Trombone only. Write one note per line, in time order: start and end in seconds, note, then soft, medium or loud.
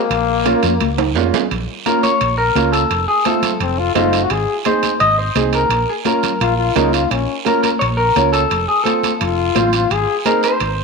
0.00 1.14 A#3 medium
3.61 3.80 C4 medium
3.79 3.95 F4 medium
3.96 4.24 F4 medium
4.23 4.33 F#4 medium
4.32 4.58 G#4 medium
6.41 6.57 F4 loud
6.58 6.78 F4 medium
6.76 6.95 D#4 medium
6.93 7.13 F4 medium
7.11 7.37 C#4 medium
9.20 9.93 F4 medium
9.92 10.18 G#4 loud